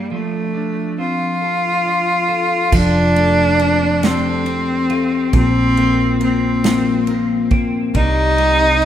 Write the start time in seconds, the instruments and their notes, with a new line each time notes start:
Already playing: clean electric guitar G2 G3 A#3 D4, cello G3
0.11 clean electric guitar F3, cello A3
0.54 clean electric guitar D4
0.98 clean electric guitar C4, cello F4
1.41 clean electric guitar A4
1.85 clean electric guitar D4
2.29 clean electric guitar A4
2.72 fingered electric bass F1, clean electric guitar F3, steel-string acoustic guitar F3, cello D4, kick, crash
3.15 clean electric guitar A3, steel-string acoustic guitar A3, ride
3.59 clean electric guitar A#3, steel-string acoustic guitar C4, ride
3.82 clean electric guitar C4
4.03 clean electric guitar A3, cello C4, steel-string acoustic guitar G4, snare, ride
4.46 steel-string acoustic guitar C4, clean electric guitar C4, ride
4.90 steel-string acoustic guitar A3, clean electric guitar F4, ride
5.12 clean electric guitar G4
5.33 fingered electric bass A#1, clean electric guitar A#2, steel-string acoustic guitar F3, cello C4, kick, ride
5.77 clean electric guitar F3, steel-string acoustic guitar A#3, ride
6.20 clean electric guitar A#3, steel-string acoustic guitar C4, cello C4, ride
6.63 clean electric guitar F3, steel-string acoustic guitar F4, snare, ride
7.07 clean electric guitar A#3, steel-string acoustic guitar C4, ride
7.51 steel-string acoustic guitar A#3, clean electric guitar C4, kick, ride
7.94 fingered electric bass C2, clean electric guitar C3, steel-string acoustic guitar G3, cello D#4, kick, ride
8.38 clean electric guitar G3, ride
8.82 ride